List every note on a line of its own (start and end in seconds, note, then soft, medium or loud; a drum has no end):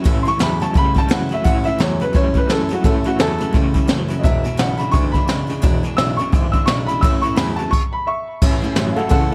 0.04 0.23 A1 medium
0.04 0.25 A2 medium
0.04 0.24 A2 medium
0.04 0.26 E3 medium
0.04 0.24 E3 loud
0.04 0.26 A3 medium
0.04 0.26 C#4 loud
0.04 0.24 E4 loud
0.04 kick loud
0.04 closed hi-hat medium
0.23 0.32 A1 soft
0.23 0.39 A2 medium
0.23 0.40 E4 medium
0.23 0.25 C6 medium
0.23 closed hi-hat medium
0.27 0.39 E3 medium
0.27 0.40 A3 soft
0.27 0.40 C#4 medium
0.27 0.41 C#6 loud
0.39 0.58 E2 medium
0.39 0.60 A2 medium
0.39 0.59 A2 medium
0.39 0.61 E3 medium
0.39 0.59 F#3 medium
0.39 0.61 A3 medium
0.39 0.60 C#4 medium
0.39 0.59 E4 medium
0.39 0.61 B5 medium
0.39 snare loud
0.39 closed hi-hat medium
0.60 0.67 E2 soft
0.60 0.74 A2 medium
0.60 0.75 F#3 loud
0.60 0.74 A3 soft
0.60 0.76 C#4 medium
0.60 0.75 E4 medium
0.60 0.75 A5 medium
0.60 closed hi-hat medium
0.74 0.93 C#2 loud
0.74 0.94 A2 medium
0.74 0.95 E3 medium
0.74 0.95 G3 medium
0.74 0.96 A3 medium
0.74 0.95 C#4 medium
0.74 0.93 E4 medium
0.74 0.96 B5 loud
0.74 kick loud
0.74 closed hi-hat medium
0.94 1.02 C#2 soft
0.94 1.10 A2 medium
0.94 1.10 G3 medium
0.94 1.08 A3 soft
0.94 1.09 C#4 soft
0.94 1.09 E4 medium
0.94 1.11 A5 loud
0.94 kick medium
0.94 closed hi-hat medium
1.09 1.28 C#2 medium
1.09 1.30 A2 medium
1.09 1.29 A2 medium
1.09 1.30 E3 medium
1.09 1.30 F#3 medium
1.09 1.30 A3 medium
1.09 1.30 C#4 medium
1.09 1.28 E4 medium
1.09 1.31 F#5 medium
1.09 snare loud
1.09 closed hi-hat medium
1.29 1.37 C#2 soft
1.29 1.44 A2 medium
1.29 1.44 F#3 medium
1.29 1.45 A3 soft
1.29 1.45 C#4 soft
1.29 1.44 E4 medium
1.29 closed hi-hat medium
1.34 1.46 E5 medium
1.44 1.63 A1 medium
1.44 1.65 A2 medium
1.44 1.64 A2 medium
1.44 1.66 E3 medium
1.44 1.64 E3 medium
1.44 1.65 A3 medium
1.44 1.64 C#4 medium
1.44 1.63 E4 loud
1.44 1.65 F#5 loud
1.44 kick loud
1.44 closed hi-hat medium
1.64 1.72 A1 soft
1.64 1.79 A2 medium
1.64 1.79 E3 medium
1.64 1.79 A3 soft
1.64 1.80 C#4 soft
1.64 1.79 E4 medium
1.64 1.79 E5 loud
1.64 closed hi-hat medium
1.78 1.97 E2 medium
1.78 2.00 A2 medium
1.78 1.99 A2 medium
1.78 2.00 E3 medium
1.78 1.99 F#3 loud
1.78 2.00 A3 medium
1.78 2.00 C#4 medium
1.78 1.99 E4 medium
1.78 2.00 C#5 medium
1.78 snare loud
1.78 closed hi-hat medium
2.00 2.06 E2 soft
2.00 2.14 A2 medium
2.00 2.14 F#3 loud
2.00 2.13 A3 soft
2.00 2.14 C#4 medium
2.00 2.14 E4 medium
2.00 2.15 B4 medium
2.00 closed hi-hat medium
2.13 2.32 F#2 medium
2.13 2.34 A2 medium
2.13 2.34 E3 medium
2.13 2.34 G3 loud
2.13 2.35 A3 medium
2.13 2.34 C#4 medium
2.13 2.33 E4 medium
2.13 2.35 C#5 loud
2.13 kick loud
2.13 closed hi-hat medium
2.34 2.49 A2 medium
2.34 2.49 G3 medium
2.34 2.49 A3 soft
2.34 2.49 C#4 soft
2.34 2.49 E4 medium
2.34 2.50 B4 medium
2.34 kick medium
2.34 closed hi-hat medium
2.49 2.67 F#2 medium
2.49 2.70 A2 medium
2.49 2.69 A2 medium
2.49 2.70 E3 medium
2.49 2.69 F#3 medium
2.49 2.71 A3 medium
2.49 2.69 C#4 medium
2.49 2.68 E4 medium
2.49 2.71 A4 medium
2.49 snare loud
2.49 closed hi-hat medium
2.69 2.76 F#2 soft
2.69 2.84 A2 medium
2.69 2.84 F#3 medium
2.69 2.84 A3 soft
2.69 2.85 C#4 medium
2.69 2.84 E4 medium
2.69 closed hi-hat medium
2.73 2.85 F#4 medium
2.84 3.02 A1 medium
2.84 3.05 A2 medium
2.84 3.04 A2 medium
2.84 3.05 E3 medium
2.84 3.04 E3 medium
2.84 3.05 A3 medium
2.84 3.05 C#4 medium
2.84 3.03 E4 medium
2.84 3.05 A4 medium
2.84 kick loud
2.84 closed hi-hat medium
3.04 3.12 A1 soft
3.04 3.18 A2 medium
3.04 3.18 E3 medium
3.04 3.19 A3 soft
3.04 3.20 C#4 soft
3.04 3.19 E4 medium
3.04 3.20 F#4 medium
3.04 closed hi-hat medium
3.19 3.37 E2 medium
3.19 3.40 A2 medium
3.19 3.38 A2 medium
3.19 3.40 E3 medium
3.19 3.39 F#3 medium
3.19 3.41 A3 medium
3.19 3.40 C#4 medium
3.19 3.37 E4 medium
3.19 3.54 A4 loud
3.19 snare loud
3.19 closed hi-hat medium
3.38 3.46 E2 soft
3.38 3.54 A2 medium
3.38 3.54 F#3 medium
3.38 3.53 A3 soft
3.38 3.54 C#4 medium
3.38 3.54 E4 medium
3.38 closed hi-hat medium
3.53 3.72 C#2 loud
3.53 3.73 A2 medium
3.53 3.74 E3 medium
3.53 3.74 G3 medium
3.53 3.75 A3 medium
3.53 3.75 C#4 medium
3.53 3.73 E4 medium
3.53 kick loud
3.53 closed hi-hat medium
3.74 3.81 C#2 soft
3.74 3.88 A2 medium
3.74 3.88 G3 medium
3.74 3.88 A3 soft
3.74 3.88 C#4 medium
3.74 3.88 E4 medium
3.74 kick medium
3.74 closed hi-hat medium
3.88 4.07 F#1 medium
3.88 4.09 A2 medium
3.88 4.08 A2 medium
3.88 4.09 E3 medium
3.88 4.08 F#3 loud
3.88 4.10 A3 medium
3.88 4.09 C#4 medium
3.88 4.07 E4 medium
3.88 snare loud
3.88 closed hi-hat medium
4.08 4.16 F#1 soft
4.08 4.23 A2 medium
4.08 4.23 F#3 medium
4.08 4.25 A3 soft
4.08 4.25 C#4 medium
4.08 4.23 E4 medium
4.08 closed hi-hat medium
4.19 4.22 D#5 medium
4.23 4.42 E1 loud
4.23 4.44 E2 medium
4.23 4.43 E2 medium
4.23 4.45 B2 medium
4.23 4.43 B2 medium
4.23 4.45 E3 medium
4.23 4.45 G#3 medium
4.23 4.44 D4 medium
4.23 4.43 E4 medium
4.23 4.58 E5 loud
4.23 kick loud
4.23 closed hi-hat medium
4.44 4.51 E1 soft
4.44 4.58 E2 medium
4.44 4.58 B2 medium
4.44 4.57 E3 soft
4.44 4.58 G#3 medium
4.44 4.58 D4 medium
4.44 4.59 E4 medium
4.44 closed hi-hat medium
4.57 4.77 B1 medium
4.57 4.79 E2 medium
4.57 4.78 E2 medium
4.57 4.79 B2 medium
4.57 4.79 C#3 medium
4.57 4.79 E3 medium
4.57 4.78 G#3 medium
4.57 4.77 D4 medium
4.57 4.76 E4 medium
4.57 4.79 F#5 medium
4.57 snare loud
4.57 closed hi-hat medium
4.77 4.86 B1 soft
4.77 4.93 E2 medium
4.77 4.93 C#3 medium
4.77 4.91 E3 soft
4.77 4.92 G#3 soft
4.77 4.93 D4 medium
4.77 4.93 E4 medium
4.77 4.92 B5 medium
4.77 closed hi-hat medium
4.91 5.11 D2 loud
4.91 5.13 E2 medium
4.91 5.13 D3 medium
4.91 5.14 E3 medium
4.91 5.14 G#3 medium
4.91 5.14 D4 medium
4.91 5.12 E4 medium
4.91 5.13 C#6 loud
4.91 kick loud
4.91 closed hi-hat medium
5.12 5.20 D2 soft
5.12 5.28 E2 medium
5.12 5.28 D3 medium
5.12 5.28 G#3 medium
5.12 5.28 D4 medium
5.12 5.28 E4 medium
5.12 5.47 B5 loud
5.12 kick medium
5.12 closed hi-hat medium
5.16 5.28 E3 soft
5.28 5.46 C#2 medium
5.28 5.49 E2 medium
5.28 5.48 E2 medium
5.28 5.49 B2 medium
5.28 5.48 C#3 medium
5.28 5.49 E3 medium
5.28 5.49 G#3 medium
5.28 5.47 D4 medium
5.28 5.46 E4 medium
5.28 snare loud
5.28 closed hi-hat medium
5.47 5.55 C#2 soft
5.47 5.62 E2 medium
5.47 5.62 C#3 medium
5.47 5.62 E3 soft
5.47 5.62 G#3 soft
5.47 5.62 D4 medium
5.47 5.62 E4 medium
5.47 closed hi-hat medium
5.62 5.81 E1 medium
5.62 5.83 E2 medium
5.62 5.82 E2 medium
5.62 5.84 B2 loud
5.62 5.82 B2 loud
5.62 5.84 E3 medium
5.62 5.84 G#3 loud
5.62 5.83 D4 medium
5.62 5.82 E4 loud
5.62 kick loud
5.62 closed hi-hat medium
5.83 5.90 E1 soft
5.83 5.97 E2 medium
5.83 5.97 B2 medium
5.83 5.98 E3 medium
5.83 5.98 G#3 medium
5.83 5.98 D4 medium
5.83 5.98 E4 medium
5.83 closed hi-hat medium
5.97 6.16 B1 medium
5.97 6.19 E2 medium
5.97 6.17 E2 medium
5.97 6.19 B2 medium
5.97 6.18 C#3 loud
5.97 6.20 E3 medium
5.97 6.19 G#3 medium
5.97 6.18 D4 medium
5.97 6.17 E4 medium
5.97 6.18 E6 loud
5.97 snare loud
5.97 closed hi-hat medium
6.17 6.24 B1 soft
6.17 6.32 E2 medium
6.17 6.33 C#3 loud
6.17 6.33 G#3 soft
6.17 6.34 D4 medium
6.17 6.33 E4 medium
6.17 6.32 C#6 loud
6.17 closed hi-hat medium
6.21 6.31 E3 medium
6.32 6.51 G#1 medium
6.32 6.52 E2 medium
6.32 6.52 D3 medium
6.32 6.54 E3 medium
6.32 6.54 G#3 medium
6.32 6.53 D4 medium
6.32 6.52 E4 medium
6.32 kick loud
6.32 closed hi-hat medium
6.52 6.59 G#1 soft
6.52 6.67 E2 medium
6.52 6.67 D3 medium
6.52 6.67 G#3 soft
6.52 6.67 D4 medium
6.52 6.68 E4 medium
6.52 6.67 E6 medium
6.52 kick medium
6.52 closed hi-hat medium
6.56 6.66 E3 soft
6.66 6.85 B1 medium
6.66 6.88 E2 medium
6.66 6.87 E2 medium
6.66 6.88 B2 medium
6.66 6.87 C#3 medium
6.66 6.89 E3 medium
6.66 6.89 G#3 medium
6.66 6.88 D4 medium
6.66 6.87 E4 medium
6.66 6.87 C#6 loud
6.66 snare loud
6.66 closed hi-hat medium
6.87 6.94 B1 soft
6.87 7.02 E2 medium
6.87 7.02 C#3 medium
6.87 7.04 G#3 medium
6.87 7.03 D4 medium
6.87 7.03 E4 medium
6.87 7.02 B5 loud
6.87 closed hi-hat medium
6.91 7.02 E3 soft
7.01 7.21 A1 medium
7.01 7.21 A2 medium
7.01 7.24 A2 medium
7.01 7.24 E3 medium
7.01 7.22 E3 loud
7.01 7.24 A3 medium
7.01 7.23 C#4 medium
7.01 7.21 E4 medium
7.01 7.22 E6 loud
7.01 kick loud
7.01 closed hi-hat loud
7.22 7.29 A1 soft
7.22 7.36 A2 medium
7.22 7.37 E3 medium
7.22 7.36 A3 soft
7.22 7.37 C#4 soft
7.22 7.37 E4 medium
7.22 7.36 C#6 loud
7.22 closed hi-hat medium
7.36 7.55 E2 loud
7.36 7.58 A2 medium
7.36 7.56 A2 loud
7.36 7.58 E3 medium
7.36 7.57 F#3 medium
7.36 7.58 A3 medium
7.36 7.57 C#4 medium
7.36 7.55 E4 loud
7.36 7.57 B5 medium
7.36 snare loud
7.36 closed hi-hat medium
7.56 7.64 E2 soft
7.56 7.71 A2 loud
7.56 7.71 F#3 medium
7.56 7.73 A3 soft
7.56 7.73 C#4 medium
7.56 7.72 E4 medium
7.56 7.71 A5 loud
7.56 closed hi-hat medium
7.71 7.92 C#6 loud
7.71 kick medium
7.71 crash medium
7.93 8.07 B5 loud
8.07 8.39 E5 medium
8.07 8.41 C#6 loud
8.42 8.57 A1 medium
8.42 8.63 A2 medium
8.42 8.61 A2 medium
8.42 8.63 E3 medium
8.42 8.61 E3 loud
8.42 8.63 A3 medium
8.42 8.63 C#4 medium
8.42 8.61 E4 medium
8.42 kick loud
8.42 crash loud
8.62 8.68 A1 soft
8.62 8.75 A2 medium
8.62 8.75 E3 medium
8.62 8.76 A3 medium
8.62 8.77 C#4 medium
8.62 8.77 E4 medium
8.76 8.92 A1 medium
8.76 8.95 A2 medium
8.76 8.97 E3 medium
8.76 8.95 F#3 loud
8.76 8.97 A3 medium
8.76 8.97 C#4 medium
8.76 8.95 E4 medium
8.76 snare loud
8.76 open hi-hat medium
8.93 9.10 A2 medium
8.93 9.10 E4 medium
8.93 9.09 A4 medium
8.93 8.95 F5 medium
8.97 9.03 A1 soft
8.97 9.10 F#3 medium
8.97 9.09 A3 soft
8.97 9.10 C#4 medium
8.97 9.10 F#5 medium
9.09 9.26 C#2 loud
9.09 9.31 A2 medium
9.09 9.30 A2 medium
9.09 9.31 E3 medium
9.09 9.30 E3 medium
9.09 9.32 A3 medium
9.09 9.32 C#4 medium
9.09 9.31 E4 medium
9.09 9.30 A4 loud
9.09 9.30 F#5 loud
9.09 kick loud
9.09 open hi-hat medium